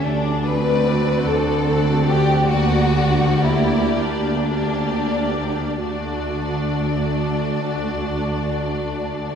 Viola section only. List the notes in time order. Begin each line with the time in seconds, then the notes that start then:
0.46 C4 F#4
1.63 C4 F#4
2.49 A#3 G4
2.94 A#3 G4
4.54 A#3 G4
5.83 A3 F#4